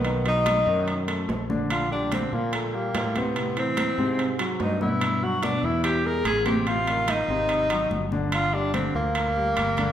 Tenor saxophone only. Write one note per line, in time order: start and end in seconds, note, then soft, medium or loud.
0.00 0.24 B3 medium
0.28 1.06 D#4 loud
1.71 1.90 F4 medium
1.92 2.15 D4 medium
2.14 2.36 C4 medium
2.34 2.53 A#3 medium
2.54 2.76 A3 medium
2.75 3.18 A#3 medium
3.17 3.57 B3 medium
3.59 4.36 C4 loud
4.61 4.80 D#4 medium
4.82 5.25 E4 medium
5.24 5.44 F#4 loud
5.43 5.66 D4 medium
5.64 5.84 E4 medium
5.84 6.08 G4 medium
6.06 6.26 A#4 medium
6.26 6.45 G#4 loud
6.46 6.69 G4 medium
6.68 7.11 F4 loud
7.10 8.12 D#4 medium
8.33 8.55 F4 loud
8.54 8.73 D4 medium
8.74 8.93 C4 medium
8.95 9.92 A#3 loud